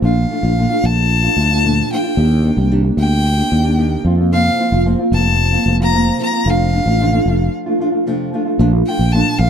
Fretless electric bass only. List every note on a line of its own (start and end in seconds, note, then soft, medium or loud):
0.02 0.24 A#1 medium
0.43 0.65 A#1 medium
0.84 1.27 A#1 medium
1.36 1.80 D2 medium
2.17 2.50 D#2 loud
2.57 2.90 C2 medium
2.97 3.41 D2 medium
3.52 3.95 D#2 medium
4.05 4.48 F2 medium
4.72 4.94 F1 medium
5.12 5.56 F1 medium
5.66 6.09 F1 medium
6.46 6.79 F1 loud
6.86 7.19 A1 medium
7.26 7.48 F1 medium
8.59 8.81 A#1 loud
8.99 9.21 A#1 medium
9.39 9.50 A#1 loud